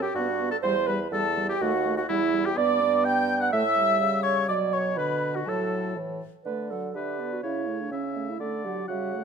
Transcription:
0.02 G4 G5
0.14 G2 B3 F#4 F#5
0.40 B3
0.51 A4 A5
0.63 E2 G3 C5 C6
0.87 G3 B4 B5
1.11 E2 G3 A4 A5
1.37 G3
1.49 G4 G5
1.60 D#2 A3 F#4 F#5
1.85 A3
1.97 F#4 F#5
2.09 E2 G3 E4 E5
2.33 G3
2.44 G4 G5
2.56 G2 B3 D5 D6
2.82 B3
3.05 G5 G6
3.40 F#5 F#6
3.52 A2 A3 E5 E6
3.77 G3
4.00 C#3
4.23 C#5 C#6
4.48 B2 F#3 D5 D6
4.72 C#5 C#6
4.95 D3 B4 B5
5.34 F#4 F#5
5.46 A2 F#3 A4 A5
5.96 A2 E3
6.45 D3 A3 B4 D5
6.70 F#3 A4 F#5
6.95 D3 D4 G4 B4 E5
7.20 B3 D5
7.33 F#4
7.43 C#3 C#4 E4 C#5 E5
7.67 A3 C#5
7.81 D4
7.91 C#3 C#4 E5
8.16 A3 C#5
8.30 E4
8.40 D3 A3 A4 D5
8.65 F#3 G4 F#5
8.88 C#3 G3 F#4 E5 F#5
9.13 A3 C#5

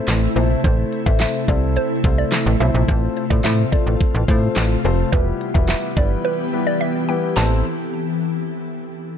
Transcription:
Already playing: C3 A3 C4 E4 A4 C5
0.08 A1, snare, clap, closed hi-hat, tambourine
0.36 A#1 A3 C4 E4 A4 C5, closed hi-hat
0.64 A1 A3 C4 E4 A4 C5, kick, closed hi-hat
0.93 closed hi-hat
1.06 A1 A3 C4 E4 A4 C5 E5, kick
1.20 E5, snare, clap, closed hi-hat, tambourine
1.48 C2 A3 C4 E4 A4 C5 D5, kick, closed hi-hat
1.76 C5, closed hi-hat
2.04 C2 A3 C4 E4 A4 C5, kick, closed hi-hat
2.18 D5
2.32 snare, clap, closed hi-hat, tambourine
2.46 A1
2.60 B1 A3 C4 E4 A4 C5 E5, closed hi-hat
2.75 A#1
2.88 A1 A3 C4 F4 A4 C5, kick, closed hi-hat
3.17 closed hi-hat
3.30 A2 A3 C4 F4 A4 C5 D5, kick
3.44 A2 E5, snare, clap, closed hi-hat, tambourine
3.72 A3 C4 F4 A4 C5 D5, kick, closed hi-hat
3.87 A1
4.00 kick, closed hi-hat
4.15 A1
4.28 A2 A3 C4 F4 A4 C5, kick, closed hi-hat
4.56 A1, snare, clap, closed hi-hat, tambourine
4.84 F1 A3 C4 F4 A4 C5, closed hi-hat
5.12 E1 E3 G3 B3 E4 G4 B4, kick, closed hi-hat
5.41 closed hi-hat
5.54 E1 G3 B3 E4 G4 B4 E5, kick
5.69 E5, snare, clap, closed hi-hat, tambourine
5.97 G1 G3 B3 E4 G4 B4 D5, kick, closed hi-hat
6.25 B4
6.53 G3 B3 E4 G4 B4
6.67 D5
6.81 E5
7.08 G3 B3 E4 G4 B4 G5
7.36 A1 C4 E4 A4 C5 A5, snare, clap, tambourine

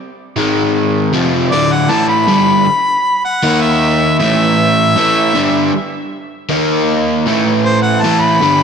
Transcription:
0.36 G#2 D#3 G#3
1.13 F2 C3 F3
1.51 D2 A2 D3 D5
1.72 F#5
1.89 A2 E3 A3 A5
2.09 B5
2.27 G2 D3 G3
2.66 muted overdriven electric guitar stroke
3.25 F#5
3.43 D#3 A#3 D#4
3.61 E5
4.19 A2 E3 A3 E5
4.96 A2 E3 A3
5.34 G2 D3 G3
5.73 muted overdriven electric guitar stroke
6.49 D#3 A#3 D#4
7.26 A2 E3 A3
7.64 C5
7.82 F#5
8.01 A2 E3 A3 A5
8.20 B5
8.41 G2 D3 G3

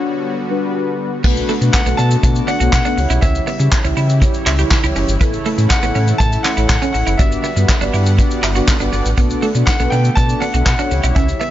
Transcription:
Already playing: D3 G3 B3 D4 F#4 C#5 F#5
0.50 G3 D4 F#4 B4
1.24 B1 D3 A3 B3 D4 F#4 B4, kick, crash, shaker
1.36 closed hi-hat, shaker
1.49 A3, open hi-hat, shaker
1.61 B2 A3 B3 D4 F#4 B4, muted clean electric guitar stroke, closed hi-hat, shaker
1.73 F#5, muted clean electric guitar stroke, kick, snare, clap, shaker
1.86 B1 A3 B3 D4 F#4 A4, closed hi-hat, shaker
1.97 B2 D4 A5, open hi-hat, shaker
2.11 closed hi-hat, shaker
2.23 B2 A3 B3 D4 F#4 D5, muted clean electric guitar stroke, kick, closed hi-hat, shaker
2.35 closed hi-hat, shaker
2.47 D4 F#5, open hi-hat, shaker
2.60 B1 A3 B3 D4 F#4 C#5, closed hi-hat, shaker
2.72 B2 F#5, kick, snare, clap, shaker
2.85 A3 B3 D4 F#4 A4, closed hi-hat, shaker
2.97 C#2 C#3 E3 G3 E4 G4 C#5, muted clean electric guitar stroke, open hi-hat, shaker
3.10 B1 E4, closed hi-hat, shaker
3.21 C#2 C#4 E5, kick, closed hi-hat, shaker
3.35 closed hi-hat, shaker
3.46 B3 E5, open hi-hat, shaker
3.59 C#3 E4 G4 C#5, muted clean electric guitar stroke, closed hi-hat, shaker
3.72 muted clean electric guitar stroke, kick, snare, clap, shaker
3.84 C#2 C#4 E4 G4 E5, closed hi-hat, shaker
3.97 C#3 E4, open hi-hat, shaker
4.09 closed hi-hat, shaker
4.21 E4 G4 C#5, muted clean electric guitar stroke, kick, closed hi-hat, shaker
4.33 closed hi-hat, shaker
4.46 C#2 E4, clap, open hi-hat, shaker
4.59 E4 G4 C#5, closed hi-hat, shaker
4.71 muted clean electric guitar stroke, kick, snare, clap, shaker
4.84 C#2 E4 G4 C#5, closed hi-hat, shaker
4.96 F#1 C#4, open hi-hat, shaker
5.08 G1, closed hi-hat, shaker
5.21 A1 A3 B3 E4 A4 C#5, kick, closed hi-hat, shaker
5.33 closed hi-hat, shaker
5.46 A3, open hi-hat, shaker
5.58 A2 E4 A4 C#5, muted clean electric guitar stroke, closed hi-hat, shaker
5.69 F#5, muted clean electric guitar stroke, kick, snare, clap, shaker
5.83 A1 B3 E4 A4 C#5, closed hi-hat, shaker
5.95 A2 C#4, open hi-hat, shaker
6.08 closed hi-hat, shaker
6.18 A2 E4 A4 E5 A5, muted clean electric guitar stroke, kick, closed hi-hat, shaker
6.32 closed hi-hat, shaker
6.43 C#4 F#5, clap, open hi-hat, shaker
6.57 A1 E4 A4 C#5, closed hi-hat, shaker
6.68 A2 F#5, kick, snare, clap, shaker
6.82 C#4 E4 A4 C#5, closed hi-hat, shaker
6.93 A1 F#5, muted clean electric guitar stroke, open hi-hat, shaker
7.07 F#1 E4, closed hi-hat, shaker
7.17 G1 D3 G3 B3 D4 F#4 G4 D5 E5, kick, closed hi-hat, shaker
7.31 closed hi-hat, shaker
7.42 B3 E5, open hi-hat, shaker
7.56 G2 B3 D4 F#4 G4 B4, muted clean electric guitar stroke, closed hi-hat, shaker
7.69 muted clean electric guitar stroke, kick, snare, clap, shaker
7.81 G1 B3 D4 F#4 G4 D5, closed hi-hat, shaker
7.94 G2 E4, open hi-hat, shaker
8.06 closed hi-hat, shaker
8.18 B3 D4 F#4 G4 D5, muted clean electric guitar stroke, kick, closed hi-hat, shaker
8.31 closed hi-hat, shaker
8.43 G1 E4, clap, open hi-hat, shaker
8.55 B3 D4 F#4 G4 D5, closed hi-hat, shaker
8.68 muted clean electric guitar stroke, kick, snare, clap, shaker
8.80 G1 B3 D4 F#4 G4 D5, closed hi-hat, shaker
8.93 G1 B3, open hi-hat, shaker
9.05 A1, closed hi-hat, shaker
9.17 B1 A3 B3 D4 F#4 A4 D5, kick, closed hi-hat, shaker
9.30 closed hi-hat, shaker
9.42 A3, open hi-hat, shaker
9.55 B2 B3 D4 F#4 A4 D5, muted clean electric guitar stroke, closed hi-hat, shaker
9.66 F#5, muted clean electric guitar stroke, kick, snare, clap, shaker
9.80 B1 B3 D4 F#4 A4 B4, closed hi-hat, shaker
9.90 B2 D4 G5, open hi-hat, shaker
10.05 closed hi-hat, shaker
10.15 B2 B3 D4 F#4 A4 D5 A5, muted clean electric guitar stroke, kick, closed hi-hat, shaker
10.29 closed hi-hat, shaker
10.40 D4 F#5, open hi-hat, shaker
10.54 B1 B3 D4 F#4 A4 E5, closed hi-hat, shaker
10.65 B2 F#5, kick, snare, clap, shaker
10.79 B3 D4 F#4 A4 C#5, closed hi-hat, shaker
10.91 C#2 C#3 E3 G3 E4 G4 C#5, muted clean electric guitar stroke, open hi-hat, shaker
11.04 B1 E4, closed hi-hat, shaker
11.15 C#2 C#4 E5, kick, closed hi-hat, shaker
11.29 closed hi-hat, shaker
11.40 B3 E5, open hi-hat, shaker

